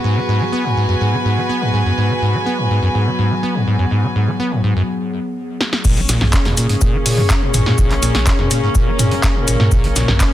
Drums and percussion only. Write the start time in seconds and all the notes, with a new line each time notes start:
5.61 snare
5.73 snare
5.85 kick, crash, shaker
5.97 closed hi-hat
6.09 snare, open hi-hat, shaker
6.21 snare, mid tom
6.33 kick, snare, clap, shaker
6.45 snare, closed hi-hat
6.57 open hi-hat, shaker
6.69 closed hi-hat
6.81 kick, shaker
7.06 open hi-hat
7.18 mid tom
7.30 kick, snare, clap, shaker
7.54 mid tom, open hi-hat, shaker
7.66 snare
7.78 kick, shaker
7.91 clap, closed hi-hat
8.03 snare, open hi-hat, shaker
8.15 snare, closed hi-hat
8.27 kick, snare, clap, shaker
8.39 snare
8.51 open hi-hat, shaker
8.75 kick, shaker
8.99 mid tom, open hi-hat, shaker
9.11 closed hi-hat
9.23 kick, snare, clap, shaker
9.48 open hi-hat, shaker
9.60 snare, mid tom
9.72 kick, shaker
9.84 closed hi-hat
9.96 snare, open hi-hat, shaker
10.08 snare, mid tom
10.20 kick, snare, clap, shaker